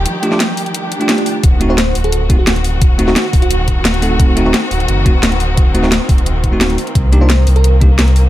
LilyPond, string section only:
\new Staff \with { instrumentName = "String section" } { \clef bass \time 4/4 \key d \phrygian \tempo 4 = 174 << { <f g'>1 | fis'1~ | fis'1~ | fis'1~ |
fis'2.~ fis'8 bes8~ | bes1 | } \\ { <ees g>1 | <ees c'>1~ | <ees c'>1~ | <ees c'>1~ |
<ees c'>1~ | <ees c'>1 | } >> }